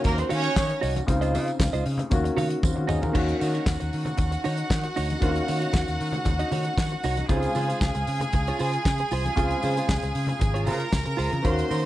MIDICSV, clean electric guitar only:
0, 0, Header, 1, 3, 480
1, 0, Start_track
1, 0, Tempo, 518135
1, 999, Time_signature, 4, 2, 24, 8
1, 10982, End_track
2, 0, Start_track
2, 0, Title_t, "Clean electric guitar"
2, 0, Program_c, 0, 27
2, 272, Note_on_c, 0, 66, 88
2, 278, Note_on_c, 0, 73, 100
2, 285, Note_on_c, 0, 77, 93
2, 396, Note_off_c, 0, 77, 0
2, 400, Note_off_c, 0, 73, 0
2, 471, Note_off_c, 0, 66, 0
2, 753, Note_on_c, 0, 66, 73
2, 761, Note_on_c, 0, 73, 91
2, 767, Note_on_c, 0, 75, 80
2, 877, Note_off_c, 0, 75, 0
2, 883, Note_off_c, 0, 73, 0
2, 950, Note_off_c, 0, 66, 0
2, 1123, Note_on_c, 0, 75, 77
2, 1131, Note_on_c, 0, 72, 77
2, 1136, Note_on_c, 0, 65, 73
2, 1230, Note_off_c, 0, 65, 0
2, 1241, Note_on_c, 0, 65, 72
2, 1242, Note_off_c, 0, 72, 0
2, 1245, Note_off_c, 0, 75, 0
2, 1253, Note_on_c, 0, 72, 91
2, 1256, Note_on_c, 0, 75, 81
2, 1356, Note_off_c, 0, 75, 0
2, 1365, Note_off_c, 0, 72, 0
2, 1396, Note_off_c, 0, 65, 0
2, 1604, Note_on_c, 0, 75, 87
2, 1610, Note_on_c, 0, 72, 76
2, 1617, Note_on_c, 0, 65, 58
2, 1712, Note_off_c, 0, 65, 0
2, 1715, Note_off_c, 0, 72, 0
2, 1723, Note_off_c, 0, 75, 0
2, 2191, Note_on_c, 0, 66, 88
2, 2195, Note_on_c, 0, 73, 90
2, 2204, Note_on_c, 0, 77, 95
2, 2313, Note_off_c, 0, 77, 0
2, 2315, Note_off_c, 0, 73, 0
2, 2388, Note_off_c, 0, 66, 0
2, 2663, Note_on_c, 0, 66, 88
2, 2671, Note_on_c, 0, 73, 83
2, 2676, Note_on_c, 0, 75, 96
2, 2788, Note_off_c, 0, 75, 0
2, 2800, Note_off_c, 0, 73, 0
2, 2864, Note_off_c, 0, 66, 0
2, 2902, Note_on_c, 0, 63, 82
2, 2910, Note_on_c, 0, 66, 86
2, 2915, Note_on_c, 0, 73, 96
2, 3103, Note_off_c, 0, 63, 0
2, 3107, Note_off_c, 0, 66, 0
2, 3110, Note_off_c, 0, 73, 0
2, 3146, Note_on_c, 0, 63, 62
2, 3148, Note_on_c, 0, 66, 72
2, 3159, Note_on_c, 0, 73, 78
2, 3268, Note_off_c, 0, 73, 0
2, 3277, Note_off_c, 0, 66, 0
2, 3279, Note_off_c, 0, 63, 0
2, 3279, Note_on_c, 0, 73, 63
2, 3288, Note_on_c, 0, 66, 59
2, 3290, Note_on_c, 0, 63, 56
2, 3389, Note_off_c, 0, 63, 0
2, 3393, Note_off_c, 0, 66, 0
2, 3395, Note_off_c, 0, 73, 0
2, 4114, Note_on_c, 0, 63, 81
2, 4117, Note_on_c, 0, 66, 77
2, 4127, Note_on_c, 0, 73, 100
2, 4237, Note_off_c, 0, 73, 0
2, 4244, Note_off_c, 0, 66, 0
2, 4309, Note_off_c, 0, 63, 0
2, 4596, Note_on_c, 0, 63, 80
2, 4603, Note_on_c, 0, 66, 76
2, 4607, Note_on_c, 0, 73, 89
2, 4716, Note_off_c, 0, 73, 0
2, 4723, Note_off_c, 0, 66, 0
2, 4791, Note_off_c, 0, 63, 0
2, 4832, Note_on_c, 0, 63, 75
2, 4838, Note_on_c, 0, 66, 84
2, 4844, Note_on_c, 0, 73, 78
2, 5028, Note_off_c, 0, 63, 0
2, 5032, Note_off_c, 0, 66, 0
2, 5035, Note_off_c, 0, 73, 0
2, 5066, Note_on_c, 0, 63, 59
2, 5072, Note_on_c, 0, 66, 72
2, 5083, Note_on_c, 0, 73, 78
2, 5183, Note_off_c, 0, 73, 0
2, 5188, Note_off_c, 0, 66, 0
2, 5194, Note_on_c, 0, 73, 67
2, 5195, Note_off_c, 0, 63, 0
2, 5199, Note_on_c, 0, 66, 67
2, 5206, Note_on_c, 0, 63, 50
2, 5297, Note_off_c, 0, 63, 0
2, 5305, Note_off_c, 0, 66, 0
2, 5308, Note_off_c, 0, 73, 0
2, 5923, Note_on_c, 0, 75, 64
2, 5929, Note_on_c, 0, 66, 58
2, 5932, Note_on_c, 0, 63, 55
2, 6021, Note_off_c, 0, 63, 0
2, 6027, Note_off_c, 0, 66, 0
2, 6032, Note_on_c, 0, 63, 79
2, 6038, Note_on_c, 0, 66, 90
2, 6041, Note_off_c, 0, 75, 0
2, 6044, Note_on_c, 0, 73, 94
2, 6162, Note_off_c, 0, 73, 0
2, 6168, Note_off_c, 0, 66, 0
2, 6229, Note_off_c, 0, 63, 0
2, 6521, Note_on_c, 0, 63, 77
2, 6530, Note_on_c, 0, 66, 85
2, 6535, Note_on_c, 0, 73, 91
2, 6636, Note_off_c, 0, 73, 0
2, 6647, Note_off_c, 0, 66, 0
2, 6714, Note_off_c, 0, 63, 0
2, 6758, Note_on_c, 0, 65, 77
2, 6761, Note_on_c, 0, 68, 90
2, 6773, Note_on_c, 0, 72, 84
2, 6953, Note_off_c, 0, 65, 0
2, 6954, Note_off_c, 0, 68, 0
2, 6960, Note_off_c, 0, 72, 0
2, 6996, Note_on_c, 0, 65, 76
2, 7004, Note_on_c, 0, 68, 76
2, 7009, Note_on_c, 0, 72, 86
2, 7105, Note_off_c, 0, 72, 0
2, 7114, Note_off_c, 0, 68, 0
2, 7116, Note_on_c, 0, 72, 65
2, 7123, Note_off_c, 0, 65, 0
2, 7125, Note_on_c, 0, 68, 59
2, 7134, Note_on_c, 0, 65, 51
2, 7222, Note_off_c, 0, 65, 0
2, 7229, Note_off_c, 0, 68, 0
2, 7233, Note_off_c, 0, 72, 0
2, 7856, Note_on_c, 0, 73, 59
2, 7861, Note_on_c, 0, 68, 50
2, 7867, Note_on_c, 0, 65, 54
2, 7947, Note_off_c, 0, 65, 0
2, 7957, Note_off_c, 0, 68, 0
2, 7958, Note_on_c, 0, 65, 89
2, 7968, Note_off_c, 0, 73, 0
2, 7968, Note_on_c, 0, 68, 94
2, 7972, Note_on_c, 0, 72, 106
2, 8080, Note_off_c, 0, 72, 0
2, 8093, Note_off_c, 0, 68, 0
2, 8154, Note_off_c, 0, 65, 0
2, 8445, Note_on_c, 0, 65, 78
2, 8457, Note_on_c, 0, 68, 92
2, 8458, Note_on_c, 0, 72, 101
2, 8567, Note_off_c, 0, 72, 0
2, 8576, Note_off_c, 0, 68, 0
2, 8637, Note_off_c, 0, 65, 0
2, 8683, Note_on_c, 0, 65, 82
2, 8692, Note_on_c, 0, 68, 77
2, 8696, Note_on_c, 0, 72, 79
2, 8876, Note_off_c, 0, 65, 0
2, 8881, Note_off_c, 0, 68, 0
2, 8883, Note_off_c, 0, 72, 0
2, 8924, Note_on_c, 0, 65, 63
2, 8936, Note_on_c, 0, 68, 66
2, 8939, Note_on_c, 0, 72, 70
2, 9044, Note_off_c, 0, 72, 0
2, 9054, Note_off_c, 0, 68, 0
2, 9056, Note_on_c, 0, 72, 62
2, 9057, Note_off_c, 0, 65, 0
2, 9065, Note_on_c, 0, 68, 54
2, 9068, Note_on_c, 0, 65, 52
2, 9158, Note_off_c, 0, 65, 0
2, 9166, Note_off_c, 0, 68, 0
2, 9167, Note_off_c, 0, 72, 0
2, 9765, Note_on_c, 0, 73, 57
2, 9774, Note_on_c, 0, 68, 47
2, 9780, Note_on_c, 0, 65, 45
2, 9869, Note_off_c, 0, 65, 0
2, 9873, Note_off_c, 0, 68, 0
2, 9880, Note_on_c, 0, 65, 72
2, 9884, Note_on_c, 0, 68, 80
2, 9890, Note_off_c, 0, 73, 0
2, 9894, Note_on_c, 0, 72, 73
2, 9992, Note_off_c, 0, 72, 0
2, 10004, Note_off_c, 0, 68, 0
2, 10076, Note_off_c, 0, 65, 0
2, 10349, Note_on_c, 0, 65, 80
2, 10361, Note_on_c, 0, 72, 84
2, 10362, Note_on_c, 0, 68, 84
2, 10479, Note_off_c, 0, 72, 0
2, 10489, Note_off_c, 0, 68, 0
2, 10550, Note_off_c, 0, 65, 0
2, 10601, Note_on_c, 0, 66, 77
2, 10609, Note_on_c, 0, 70, 88
2, 10613, Note_on_c, 0, 73, 88
2, 10796, Note_off_c, 0, 66, 0
2, 10801, Note_off_c, 0, 70, 0
2, 10802, Note_off_c, 0, 73, 0
2, 10841, Note_on_c, 0, 66, 71
2, 10847, Note_on_c, 0, 70, 72
2, 10856, Note_on_c, 0, 73, 81
2, 10954, Note_off_c, 0, 73, 0
2, 10964, Note_off_c, 0, 70, 0
2, 10971, Note_off_c, 0, 66, 0
2, 10982, End_track
3, 0, Start_track
3, 0, Title_t, "Muted clean electric guitar strokes"
3, 41, Note_on_c, 9, 29, 51
3, 133, Note_off_c, 9, 29, 0
3, 168, Note_on_c, 9, 29, 51
3, 261, Note_off_c, 9, 29, 0
3, 400, Note_on_c, 9, 29, 46
3, 493, Note_off_c, 9, 29, 0
3, 643, Note_on_c, 9, 29, 46
3, 735, Note_off_c, 9, 29, 0
3, 888, Note_on_c, 9, 29, 43
3, 981, Note_off_c, 9, 29, 0
3, 996, Note_on_c, 9, 29, 38
3, 1088, Note_off_c, 9, 29, 0
3, 1367, Note_on_c, 9, 29, 45
3, 1460, Note_off_c, 9, 29, 0
3, 1474, Note_on_c, 9, 29, 40
3, 1567, Note_off_c, 9, 29, 0
3, 1723, Note_on_c, 9, 29, 41
3, 1816, Note_off_c, 9, 29, 0
3, 1844, Note_on_c, 9, 29, 44
3, 1937, Note_off_c, 9, 29, 0
3, 1953, Note_on_c, 9, 29, 39
3, 2046, Note_off_c, 9, 29, 0
3, 2078, Note_on_c, 9, 29, 49
3, 2171, Note_off_c, 9, 29, 0
3, 2316, Note_on_c, 9, 29, 46
3, 2409, Note_off_c, 9, 29, 0
3, 2554, Note_on_c, 9, 29, 43
3, 2647, Note_off_c, 9, 29, 0
3, 2799, Note_on_c, 9, 29, 43
3, 2892, Note_off_c, 9, 29, 0
3, 3400, Note_on_c, 9, 29, 42
3, 3493, Note_off_c, 9, 29, 0
3, 3521, Note_on_c, 9, 29, 51
3, 3614, Note_off_c, 9, 29, 0
3, 3758, Note_on_c, 9, 29, 47
3, 3851, Note_off_c, 9, 29, 0
3, 3867, Note_on_c, 9, 29, 43
3, 3960, Note_off_c, 9, 29, 0
3, 3997, Note_on_c, 9, 29, 37
3, 4090, Note_off_c, 9, 29, 0
3, 4248, Note_on_c, 9, 29, 50
3, 4340, Note_off_c, 9, 29, 0
3, 4369, Note_on_c, 9, 29, 45
3, 4461, Note_off_c, 9, 29, 0
3, 4481, Note_on_c, 9, 29, 47
3, 4573, Note_off_c, 9, 29, 0
3, 4727, Note_on_c, 9, 29, 42
3, 4820, Note_off_c, 9, 29, 0
3, 5309, Note_on_c, 9, 29, 45
3, 5401, Note_off_c, 9, 29, 0
3, 5444, Note_on_c, 9, 29, 34
3, 5536, Note_off_c, 9, 29, 0
3, 5679, Note_on_c, 9, 29, 49
3, 5772, Note_off_c, 9, 29, 0
3, 5796, Note_on_c, 9, 29, 37
3, 5889, Note_off_c, 9, 29, 0
3, 6173, Note_on_c, 9, 29, 40
3, 6265, Note_off_c, 9, 29, 0
3, 6287, Note_on_c, 9, 29, 40
3, 6379, Note_off_c, 9, 29, 0
3, 6411, Note_on_c, 9, 29, 42
3, 6503, Note_off_c, 9, 29, 0
3, 6647, Note_on_c, 9, 29, 42
3, 6740, Note_off_c, 9, 29, 0
3, 7364, Note_on_c, 9, 29, 39
3, 7456, Note_off_c, 9, 29, 0
3, 7606, Note_on_c, 9, 29, 55
3, 7699, Note_off_c, 9, 29, 0
3, 7723, Note_on_c, 9, 29, 47
3, 7816, Note_off_c, 9, 29, 0
3, 8091, Note_on_c, 9, 29, 39
3, 8184, Note_off_c, 9, 29, 0
3, 8338, Note_on_c, 9, 29, 47
3, 8431, Note_off_c, 9, 29, 0
3, 8578, Note_on_c, 9, 29, 45
3, 8670, Note_off_c, 9, 29, 0
3, 9296, Note_on_c, 9, 29, 42
3, 9388, Note_off_c, 9, 29, 0
3, 9529, Note_on_c, 9, 29, 46
3, 9622, Note_off_c, 9, 29, 0
3, 9646, Note_on_c, 9, 29, 38
3, 9739, Note_off_c, 9, 29, 0
3, 10003, Note_on_c, 9, 29, 44
3, 10096, Note_off_c, 9, 29, 0
3, 10120, Note_on_c, 9, 29, 44
3, 10213, Note_off_c, 9, 29, 0
3, 10242, Note_on_c, 9, 29, 45
3, 10334, Note_off_c, 9, 29, 0
3, 10490, Note_on_c, 9, 29, 42
3, 10583, Note_off_c, 9, 29, 0
3, 10982, End_track
0, 0, End_of_file